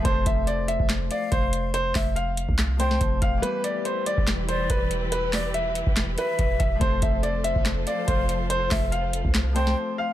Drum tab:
HH |x-x-x-x-x-x-x-x-|x-o-x-x-x-x-x-x-|x-x-x-x-x-x-x-x-|x-o-x-x-x-x-x-x-|
CP |--------x-------|--x-----x-------|--------x-------|--x-----x-------|
SD |--------o-------|--o-----o--o----|--------o-------|--o-----o-------|
BD |o-o----o----o---|--o----o----o-o-|-------o----o---|-------o----o-o-|

HH |x-x-x-x-x-x-x-x-|x-o-x-x-x-x-----|
CP |--------x-------|--x-----x-------|
SD |--------o-------|--o-----o--o----|
BD |o-o----o----o---|--o----o--------|